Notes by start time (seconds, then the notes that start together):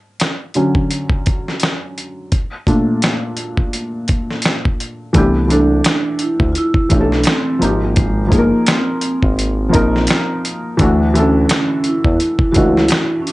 0.20 snare, closed hi-hat
0.54 D3 F#3 C#4, closed hi-hat
0.75 kick
0.91 closed hi-hat
1.09 kick
1.26 kick, closed hi-hat
1.48 snare
1.60 snare, closed hi-hat
1.98 closed hi-hat
2.32 kick, closed hi-hat
2.67 A#2 A3 D4, kick, closed hi-hat
3.02 snare, closed hi-hat
3.37 closed hi-hat
3.57 kick
3.73 closed hi-hat
4.08 kick, closed hi-hat
4.31 snare
4.42 snare, closed hi-hat
4.65 kick
4.80 closed hi-hat
5.13 C2 E3 A3 B3 D4, kick, closed hi-hat
5.18 G4
5.47 E3 A3 D4, closed hi-hat
5.52 D4 A4
5.84 finger snap, snare, closed hi-hat
6.19 E4, closed hi-hat
6.40 D2, kick
6.52 F4, closed hi-hat
6.58 E4
6.74 kick
6.89 B1 E3 A3 D4, kick, closed hi-hat
6.94 G4
7.01 A4
7.12 snare
7.24 finger snap, snare, closed hi-hat
7.28 C4
7.59 G#1 F3 A#3 D#4, closed hi-hat
7.64 A#3 G4
7.96 G#3, kick, closed hi-hat
8.27 F3 A#3 D#4
8.32 G1 A#3 G#4, kick, closed hi-hat
8.39 A#4
8.67 C4, finger snap, snare, closed hi-hat
9.01 closed hi-hat
9.23 G#1, kick
9.39 closed hi-hat
9.69 F3 A#3 D#4
9.74 A#1 A#4, kick, closed hi-hat
9.96 snare
10.07 finger snap, snare, closed hi-hat
10.45 closed hi-hat
10.77 D2 E3 A3 D4, kick, closed hi-hat
10.82 A3 F#4
11.14 D3 E3 A3, closed hi-hat
11.18 C#4 A4
11.49 finger snap, snare, closed hi-hat
11.84 E4, closed hi-hat
12.04 E2, kick
12.20 closed hi-hat
12.39 kick
12.52 E3 A3 D4 F#4, closed hi-hat
12.56 C#2 E4 F#4, kick
12.77 snare
12.88 finger snap, snare, closed hi-hat
13.22 C#4
13.27 D4, closed hi-hat